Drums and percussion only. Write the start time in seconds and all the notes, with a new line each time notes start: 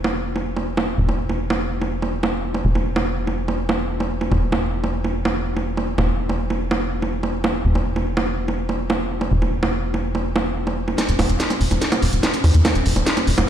0.04 high bongo
0.36 high bongo
0.56 high bongo
0.77 high bongo
1.09 high bongo
1.29 high bongo
1.50 high bongo
1.81 high bongo
2.02 high bongo
2.23 high bongo
2.54 high bongo
2.75 high bongo
2.96 high bongo
3.27 high bongo
3.48 high bongo
3.69 high bongo
4.00 high bongo
4.21 high bongo
4.32 high bongo
4.52 high bongo
4.84 high bongo
5.04 high bongo
5.25 high bongo
5.57 high bongo
5.77 high bongo
5.98 high bongo
6.29 high bongo
6.50 high bongo
6.71 high bongo
7.02 high bongo
7.23 high bongo
7.44 high bongo
7.75 high bongo
7.96 high bongo
8.17 high bongo
8.48 high bongo
8.69 high bongo
8.90 high bongo
9.21 high bongo
9.42 high bongo
9.63 high bongo
9.94 high bongo
10.15 high bongo
10.36 high bongo
10.67 high bongo
10.88 high bongo
10.98 snare, closed hi-hat, high bongo
11.09 closed hi-hat
11.19 open hi-hat, high bongo
11.29 closed hi-hat
11.40 snare, closed hi-hat
11.50 closed hi-hat, high bongo
11.61 open hi-hat
11.71 closed hi-hat, high bongo
11.81 snare, closed hi-hat
11.92 closed hi-hat, high bongo
12.02 open hi-hat
12.13 closed hi-hat
12.23 snare, closed hi-hat, high bongo
12.34 closed hi-hat
12.44 open hi-hat, high bongo
12.54 closed hi-hat
12.65 snare, closed hi-hat, high bongo
12.75 closed hi-hat
12.86 open hi-hat
12.96 closed hi-hat, high bongo
13.06 snare, closed hi-hat
13.17 closed hi-hat, high bongo
13.27 open hi-hat
13.38 closed hi-hat, high bongo